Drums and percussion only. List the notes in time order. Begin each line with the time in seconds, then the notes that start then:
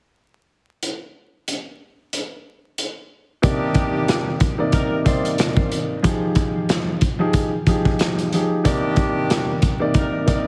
0.83 closed hi-hat
1.48 closed hi-hat
2.13 closed hi-hat
2.78 closed hi-hat
3.43 kick, closed hi-hat
3.74 kick, closed hi-hat
4.08 cross-stick, snare, closed hi-hat
4.40 kick, closed hi-hat
4.72 kick, closed hi-hat
5.06 kick, closed hi-hat
5.25 closed hi-hat
5.38 cross-stick, snare, closed hi-hat
5.57 kick
5.72 closed hi-hat
6.04 kick, closed hi-hat
6.35 kick, closed hi-hat
6.69 cross-stick, snare, closed hi-hat
7.01 kick, closed hi-hat
7.33 kick, closed hi-hat
7.67 kick, closed hi-hat
7.85 kick
7.99 cross-stick, snare, closed hi-hat
8.19 closed hi-hat
8.33 closed hi-hat
8.65 kick, closed hi-hat
8.96 kick, closed hi-hat
9.30 cross-stick, snare, closed hi-hat
9.62 kick, closed hi-hat
9.94 kick, closed hi-hat
10.28 kick, closed hi-hat